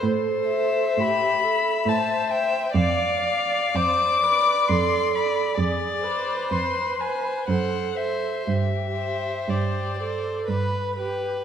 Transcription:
<<
  \new Staff \with { instrumentName = "Violin" } { \time 3/4 \key g \mixolydian \tempo 4 = 62 c''4 b''4 a''8 g''8 | f''4 d'''4 c'''8 b''8 | d''4 c'''8 aes''8 fis''8 e''8 | e''4 d''4 r4 | }
  \new Staff \with { instrumentName = "Violin" } { \time 3/4 \key g \mixolydian r8 e''4 e''4 e''8 | d''8 d''4 d''4 d''8 | r8 c''4 c''8 c''8 c''8 | r8 c''4 c''8 b'8 b'8 | }
  \new Staff \with { instrumentName = "Viola" } { \time 3/4 \key g \mixolydian a'4 g'8 a'8 c''4 | d''4 c''8 b'8 a'4 | aes'8 b'4. a'4 | g'4 g'8 a'8 b'8 g'8 | }
  \new Staff \with { instrumentName = "Cello" } { \clef bass \time 3/4 \key g \mixolydian a,4 a,4 a,4 | f,4 f,4 f,4 | f,4 f,4 fis,4 | g,4 g,4 g,4 | }
>>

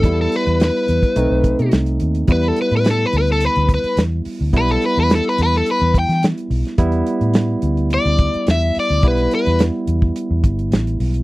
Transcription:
<<
  \new Staff \with { instrumentName = "Overdriven electric guitar" } { \time 4/4 \key e \minor \tempo 4 = 107 a'16 a'16 b'8 b'2 r4 | b'16 a'16 b'16 b'16 a'16 b'16 b'16 a'16 b'8 b'8 r4 | b'16 a'16 b'16 b'16 a'16 b'16 b'16 a'16 b'8 g''8 r4 | r2 d''4 e''8 d''8 |
b'8 b'8 r2. | }
  \new Staff \with { instrumentName = "Tine electric piano" } { \time 4/4 \key e \minor <g b e'>2 <a c' dis'>2 | <g b e'>1 | <g b e'>1 | <g b e'>1 |
<g b e'>1 | }
  \new Staff \with { instrumentName = "Fingered electric bass" } { \clef bass \time 4/4 \key e \minor e,8 r16 e,8 r16 e,16 r16 b,,16 b,,8 b,16 c,8 dis,8 | e,8 r16 a,8. d,8. d,8 r16 e,8 r16 d,16 | b,,8 r16 e,8 r16 e,8 r16 e,8 e8 r16 b,,16 r16 | e,8 r16 a,8. d,8. d,8 r16 e,8 r16 d,16 |
b,,8 r16 e,8 r16 e,8 r16 e,16 g,,8 a,,8 b,,8 | }
  \new DrumStaff \with { instrumentName = "Drums" } \drummode { \time 4/4 <hh bd>8 hh16 hh16 <hh sn>8 hh16 <hh bd>16 hh8 <hh bd>16 hh16 <hh sn>16 hh16 hh16 hh16 | <hh bd>16 hh16 hh16 hh16 <hh sn>8 hh16 hh16 hh16 hh16 <hh bd>16 hh16 <hh sn>8 hho8 | <hh bd>16 hh16 hh16 hh16 <hh sn>8 hh16 sn16 hh8 <hh bd>16 <hh sn>16 <hh sn>16 hh16 hho16 <hh sn>16 | <hh bd>16 hh16 hh16 hh16 <hh sn>8 hh16 hh16 hh16 hh16 <hh bd>16 hh16 <hh sn>8 hho8 |
<hh bd>16 hh16 hh16 <hh sn>16 <hh sn>8 hh16 bd16 hh8 <hh bd>16 hh16 <hh sn>16 hh16 hho16 hh16 | }
>>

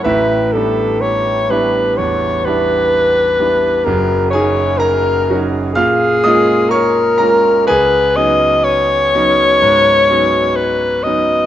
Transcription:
<<
  \new Staff \with { instrumentName = "Alto saxophone" } { \time 4/4 \key a \lydian \tempo 4 = 63 b'8 a'8 cis''8 b'8 cis''8 b'4. | \key cis \dorian ais'8 cis''8 ais'8 r8 gis'4 ais'4 | b'8 dis''8 cis''2 b'8 dis''8 | }
  \new Staff \with { instrumentName = "Grand piano" } { \time 4/4 \key a \lydian <e' e''>2.~ <e' e''>8 r8 | \key cis \dorian r8 <gis' gis''>8 <ais' ais''>4 <eis'' eis'''>8 <dis'' dis'''>8 <cis'' cis'''>8 <ais' ais''>8 | <gis' gis''>2.~ <gis' gis''>8 r8 | }
  \new Staff \with { instrumentName = "Grand piano" } { \time 4/4 \key a \lydian <a,, a,>8 <g b d' e'>4 <g b d' e'>8 e,8 <g b d' e'>4 <g b d' e'>8 | \key cis \dorian <fis,, fis,>8 <fis cis' dis' fis'>4 <fis cis' dis' fis'>8 ais,8 <gis ais cis' eis'>4 <gis ais cis' eis'>8 | cis,8 <fis b cis' dis'>4 <fis b cis' dis'>8 gis,8 <fis b cis' dis'>4 <fis b cis' dis'>8 | }
>>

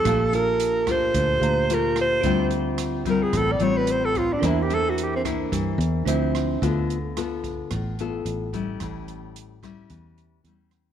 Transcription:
<<
  \new Staff \with { instrumentName = "Tine electric piano" } { \time 4/4 \key d \minor \tempo 4 = 110 <bes g' f'' a''>2~ <bes g' f'' a''>8 <bes g' f'' bes''>4. | <f' c'' e'' g''>1 | <d' bes' c'' e''>2. <d' c'' e''>4 | \key d \dorian r1 |
r1 | }
  \new Staff \with { instrumentName = "Alto saxophone" } { \time 4/4 \key d \minor a'8 bes'4 c''4. bes'8 c''8~ | c''8 r4 bes'16 gis'16 a'16 d''16 cis''16 b'16 c''16 a'16 f'16 d'16 | e'16 g'16 a'16 fis'16 g'16 c'16 r2 r8 | \key d \dorian r1 |
r1 | }
  \new Staff \with { instrumentName = "Nylon-string guitar" } { \time 4/4 \key d \minor << { <a d' f'>8 <d' f'>4 <a d' f'>4. <a d' f'>8 r8 | <g c' f'>4. <g c' f'>4 <g c' f'>4. | <bes d' e'>8 <bes d' e'>4 <bes d' e'>4. <f c' e'>4 | \key d \dorian <b f' a'>8 r8 <b f' a'>4. <b f' a'>4 <g cis' e'>8~ |
<g cis' e'>4. <g cis' e'>4. <g cis' e'>4 | } \\ { bes,2 bes,2 | d2 a,2 | e2 e4 r4 | d2 a,2 |
a,2 e2 | } >> }
  \new Staff \with { instrumentName = "Fingered electric bass" } { \clef bass \time 4/4 \key d \minor bes,,2 d,8 d,4. | d,2 a,,8 a,,4. | e,2 g,8 e,8 d,4 | \key d \dorian d,2 a,,4 a,,4 |
a,,2 e,4 e,4 | }
  \new DrumStaff \with { instrumentName = "Drums" } \drummode { \time 4/4 <hh bd ss>8 hh8 hh8 <hh bd ss>8 <hh bd>8 hh8 hh8 <hh ss>8 | <hh bd>8 hh8 <hh ss>8 <hh bd>8 <hh bd ss>8 hh8 hh8 <hh bd>8 | <hh bd ss>8 hh8 hh8 <hh bd ss>8 <hh bd>8 hh8 hh8 <hh ss>8 | <hh bd>8 hh8 <hh ss>8 <hh bd>8 <hh bd ss>8 hh8 hh8 <hh bd>8 |
<hh bd ss>8 hh8 hh8 <hh bd ss>8 <hh bd>8 hh8 hh8 <hh ss>8 | }
>>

